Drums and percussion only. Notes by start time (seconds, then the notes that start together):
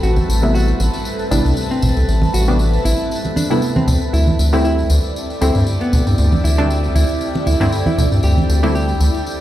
0.03 tambourine
0.16 tambourine, high conga
0.30 tambourine
0.42 tambourine
0.55 tambourine
0.68 tambourine
0.80 tambourine, muted conga
0.93 tambourine
1.05 tambourine
1.19 tambourine
1.31 tambourine
1.46 tambourine
1.57 tambourine
1.71 tambourine
1.82 tambourine, low conga
1.97 tambourine
2.09 tambourine
2.22 tambourine, high conga
2.34 tambourine
2.47 tambourine
2.59 tambourine
2.73 tambourine
2.85 tambourine, muted conga
2.99 tambourine
3.11 tambourine
3.24 tambourine, muted conga
3.36 tambourine, muted conga, high conga
3.51 tambourine
3.62 tambourine
3.76 tambourine, high conga
3.87 tambourine, low conga
4.02 tambourine
4.14 tambourine
4.27 tambourine, high conga
4.39 tambourine
4.53 tambourine
4.65 tambourine
4.79 tambourine
4.90 tambourine, muted conga
5.04 tambourine
5.16 tambourine
5.30 tambourine
5.41 tambourine
5.55 tambourine
5.67 tambourine
5.81 tambourine
5.93 tambourine, low conga
6.07 tambourine
6.18 tambourine
6.32 tambourine, high conga
6.45 tambourine
6.58 tambourine
6.70 tambourine
6.84 tambourine
6.96 tambourine, muted conga
7.09 tambourine
7.21 tambourine
7.35 tambourine, muted conga
7.46 tambourine, muted conga, high conga
7.61 tambourine
7.72 tambourine
7.86 tambourine, high conga
7.98 tambourine, low conga
8.12 tambourine
8.23 tambourine
8.37 tambourine, high conga
8.50 tambourine
8.63 tambourine
8.75 tambourine
8.89 tambourine
9.00 tambourine, muted conga
9.14 tambourine
9.26 tambourine